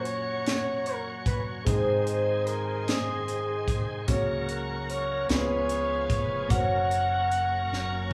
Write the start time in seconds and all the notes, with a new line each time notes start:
Already playing: A#2 F#3 C#4 F#4 C#5 F#5 A#5 C#6
0.05 C#5, closed hi-hat
0.47 C#5, snare, closed hi-hat
0.86 A#4, closed hi-hat
1.26 B4, kick, closed hi-hat
1.65 G#2 D#3 G#3 C4 D#4 G#4 C5 D#5 G#5 C6, kick, closed hi-hat
1.69 C5
2.07 closed hi-hat
2.47 A#4, closed hi-hat
2.88 G#4, snare, closed hi-hat
3.28 closed hi-hat
3.68 kick, closed hi-hat
4.08 C#2 C#3 F#3 A#3 C#4 F#4 A#4 C#5 F#5 A#5 C#6, kick, closed hi-hat
4.49 A#4, closed hi-hat
4.90 C#5, closed hi-hat
5.29 C#2 C#3 F3 B3 C#4 F4 G#4 B4 C#5 F5 G#5 B5, snare, closed hi-hat
5.69 closed hi-hat
6.10 F1, kick, closed hi-hat
6.48 F#1 F#3 A#3 C#4 F#4 A#4 F#5 A#5 C#6, kick, closed hi-hat
6.53 C5
6.60 C#5
6.91 closed hi-hat
7.32 closed hi-hat
7.71 F#1, snare